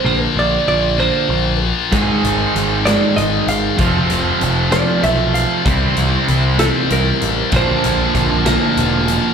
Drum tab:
HH |------|xxxxxx|xxxxxx|xxxxxx|
SD |------|---o--|---o--|---o--|
BD |------|o-----|o-----|o-----|

HH |xxxxxx|
SD |---o--|
BD |o-o---|